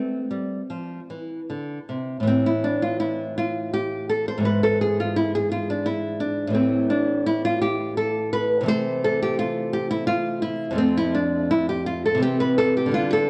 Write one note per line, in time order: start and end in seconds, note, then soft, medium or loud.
0.00 0.19 A3 medium
0.00 1.46 C4 medium
0.31 0.60 G3 medium
0.70 0.99 F3 medium
1.10 1.39 E3 medium
1.50 1.78 D3 medium
1.89 2.17 C3 medium
2.20 4.37 A2 medium
2.20 4.39 E3 medium
2.27 2.46 C4 loud
2.46 2.65 E4 medium
2.64 2.83 D4 medium
2.82 3.00 F4 medium
3.00 3.36 E4 medium
3.38 3.72 F4 medium
3.73 4.08 G4 loud
4.09 4.27 A4 medium
4.28 4.45 C5 loud
4.37 6.48 G#2 medium
4.37 6.47 E3 medium
4.43 6.51 B3 medium
4.43 4.63 B4 loud
4.63 4.81 A4 loud
4.81 4.98 G#4 loud
5.00 5.17 F4 medium
5.16 5.33 E4 loud
5.35 5.51 G#4 loud
5.52 5.68 F4 medium
5.70 5.86 D4 medium
5.86 6.19 E4 loud
6.20 6.54 D4 medium
6.48 8.60 A2 medium
6.48 8.62 E3 medium
6.53 8.63 A3 medium
6.53 6.89 C4 loud
6.90 7.25 D4 loud
7.26 7.44 E4 loud
7.45 7.61 F4 loud
7.61 7.96 G4 loud
7.97 8.31 A4 loud
8.33 8.67 B4 loud
8.61 10.70 C3 medium
8.61 10.72 E3 medium
8.66 10.72 A3 medium
8.66 9.03 C5 loud
9.04 9.22 A4 loud
9.22 9.38 G4 loud
9.39 9.72 F4 loud
9.73 9.90 G4 loud
9.91 10.06 E4 loud
10.07 10.41 F4 loud
10.42 10.77 E4 loud
10.71 12.16 F2 medium
10.71 12.17 F3 medium
10.75 12.18 A3 medium
10.75 10.96 C4 loud
10.97 11.15 E4 loud
11.14 11.49 D4 medium
11.51 11.68 E4 loud
11.69 11.86 G4 loud
11.86 12.05 F4 loud
12.06 12.22 A4 loud
12.15 12.88 C3 medium
12.15 12.86 E3 medium
12.20 12.88 C4 medium
12.20 12.40 G4 loud
12.40 12.58 B4 loud
12.58 12.77 A4 loud
12.77 12.94 G4 medium
12.86 13.30 D3 medium
12.86 13.30 G3 medium
12.92 13.30 B3 medium
12.92 13.12 F4 loud
13.13 13.30 A4 loud